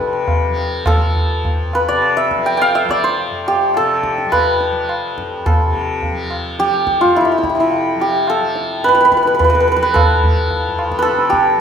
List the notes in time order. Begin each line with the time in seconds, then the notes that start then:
Already playing: F2 F3 G4 A4 B4 D5 E5
0.00 C3
0.13 tabla te
0.28 tabla na, tabla ge
0.49 F3
0.57 tabla te
0.86 A4, tabla na, tabla ge
0.96 F3
1.16 tabla ge
1.42 F2, tabla tin, tabla ge
1.73 B4, tabla na
1.89 C3 D5
2.02 tabla na
2.17 E5
2.31 tabla ke
2.38 F3
2.46 G5
2.57 G5, tabla na
2.62 F5
2.75 E5
2.85 F3
2.89 D5, tabla ke
3.04 C5, tabla te
3.17 tabla tin
3.31 F2
3.46 G4, tabla na
3.74 A4, tabla na
3.79 C3
4.03 tabla ke
4.18 tabla te
4.26 F3
4.32 B4, tabla na, tabla ge
4.61 tabla te
4.72 F3
4.89 tabla na
5.18 F2, tabla ke
5.46 A4, tabla na, tabla ge
5.65 C3
5.74 tabla ge
6.03 tabla tin, tabla ge
6.11 F3
6.31 tabla na
6.58 F3 G4, tabla te
6.73 tabla te
6.87 tabla ke
7.01 F2 F4, tabla te
7.15 E4, tabla na
7.21 E4
7.25 E4
7.32 E4
7.38 E4
7.44 E4, tabla ke
7.50 C3 E4
7.55 E4, tabla te
7.60 E4
7.71 tabla tin
7.95 F3
8.00 G4, tabla na
8.27 A4, tabla na
8.40 F3
8.56 tabla te
8.84 F2 B4, tabla te
8.88 B4
8.95 B4, tabla te
9.01 B4
9.05 B4
9.12 B4, tabla ke
9.17 B4
9.23 B4, tabla te
9.27 B4
9.33 C3 B4
9.39 B4, tabla na, tabla ge
9.44 B4
9.50 B4
9.55 B4
9.60 B4
9.67 B4, tabla te
9.72 B4
9.76 F3 B4
9.83 B4
9.94 A4, tabla na, tabla ge
10.23 F3, tabla ge
10.51 tabla tin, tabla ge
10.68 F2
10.79 tabla na
10.92 tabla ke
10.99 A4 B4
11.05 tabla te
11.12 C3
11.19 tabla te
11.30 G4, tabla ke
11.47 tabla te
11.56 F3